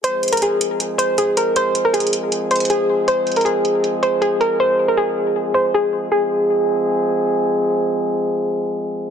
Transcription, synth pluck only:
\new Staff \with { instrumentName = "Synth pluck" } { \time 4/4 \key f \minor \tempo 4 = 158 c''8. bes'16 aes'4. c''8 aes'8 bes'8 | c''8. bes'16 aes'4. c''8 aes'4 | c''8. bes'16 aes'4. c''8 aes'8 bes'8 | c''8. bes'16 aes'4. c''8 aes'4 |
aes'2. r4 | r1 | }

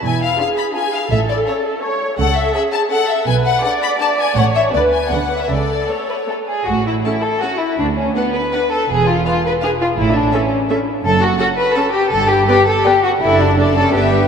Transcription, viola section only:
\new Staff \with { instrumentName = "Viola section" } { \time 3/4 \key a \major \tempo 4 = 165 << { e'4 gis'2 | a'2 cis''4 | a'4 gis'4 a'4 | b'4 d''2 |
cis''4 b'4 b'4 | a'2~ a'8 r8 | r4 a'4 a'4 | r4 b'4 b'4 |
r4 b'4 b'4 | r4 a'4 a'4 | \key d \major r4 a'4 a'4 | r4 b'4 b'4 |
a'4 a'4 b'4 | } \\ { r2. | r2. | r2. | r2. |
r2. | r2. | r4 cis'4 cis'4 | r4 d'4 d'4 |
r4 d'4 d'4 | r4 cis'4 cis'4 | r4 cis'4 cis'4 | r4 b4 b4 |
d'4 d'8 cis'8 b4 | } >> }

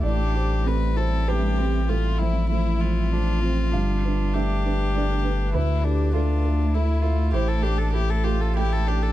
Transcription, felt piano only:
\new Staff \with { instrumentName = "Felt piano" } { \time 3/4 \key a \minor \tempo 4 = 98 << { d''4. c''8 b'4 | a'2 r4 | f''4 e''4 d''4 | b'4 a'2 |
c''2 g''4 | } \\ { a,8 <g' c''>8 <a c' g'>8 g'8 <a c' g'>8 <c' g'>8 | a,8 <f c''>8 <f a c''>8 <f c''>8 <a f' c''>8 <f' c''>8 | g,8 <d' b'>8 <a d' b'>8 <d' b'>8 <a d' b'>8 <d' b'>8 | d,8 <e' a'>8 <a e''>8 <a' e''>8 <a e' a'>8 <a' e''>8 |
a,8 <g' a'>8 <a g' a'>8 <g' a'>8 <a g' a'>8 <g' a'>8 | } >> }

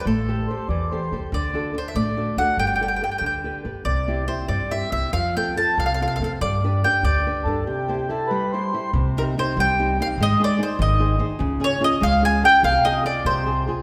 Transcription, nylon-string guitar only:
\new Staff \with { instrumentName = "Nylon-string guitar" } { \time 6/8 \key c \major \tempo 4. = 95 a8 <g' a' c''>8 <g' a' c''>8 e8 <g' a' c''>8 <g' a' c''>8 | d8 <d' fis' a'>8 <d' fis' a'>8 a8 <d' fis' a'>8 <d' fis' a'>8 | g8 <g' a' b'>8 <g' a' b'>8 d8 <g' a' b'>8 <g' a' b'>8 | c8 <c' e' g'>8 <c' e' g'>8 g8 <c' e' g'>8 <c' e' g'>8 |
f8 <c' f' a'>8 <c' f' a'>8 c8 <c' f' a'>8 <c' f' a'>8 | g8 <d' g' b'>8 <d' g' b'>8 d8 <d' g' b'>8 <d' g' b'>8 | c8 <e' g' c''>8 <e' g' c''>8 g8 <e' g' c''>8 <e' g' c''>8 | \key c \minor c8 <c' ees' g'>8 <c' ees' g'>8 g8 <c' ees' g'>8 <c' ees' g'>8 |
aes8 <ees' aes' c''>8 <ees' aes' c''>8 ees8 <ees' aes' c''>8 <ees' aes' c''>8 | des8 <des' f' aes'>8 <des' f' aes'>8 aes8 <des' f' aes'>8 <des' f' aes'>8 | c8 <c' f' aes'>8 <c' f' aes'>8 c8 <c' f' aes'>8 <c' f' aes'>8 | }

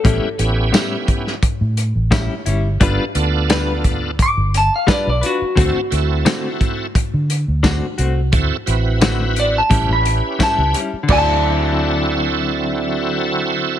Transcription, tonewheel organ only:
\new Staff \with { instrumentName = "Tonewheel organ" } { \time 4/4 \key d \mixolydian \tempo 4 = 87 <b cis' e' g'>8 <b cis' e' g'>4. r2 | <b d' f' a'>8 <b d' f' a'>4. r2 | <c' e' fis' a'>8 <c' e' fis' a'>4. r2 | <c' e' fis' a'>8 <c' e' fis' b'>4. <cis' e' g' b'>4. r8 |
<c' e' fis' a'>1 | }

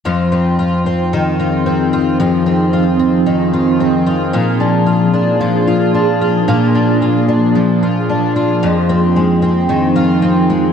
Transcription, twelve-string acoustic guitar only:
\new Staff \with { instrumentName = "Twelve-string acoustic guitar" } { \time 4/4 \key f \minor \tempo 4 = 112 <f, f'>8 c'8 f'8 c'8 ees8 f'8 c'8 f'8 | <f, f'>8 c'8 f'8 c'8 ees8 f'8 c'8 f'8 | <bes, f'>8 d'8 f'8 d'8 f8 f'8 d'8 f'8 | <bes, f'>8 d'8 f'8 d'8 f8 f'8 d'8 f'8 |
f,8 c'8 aes8 c'8 ees8 f'8 c'8 aes8 | }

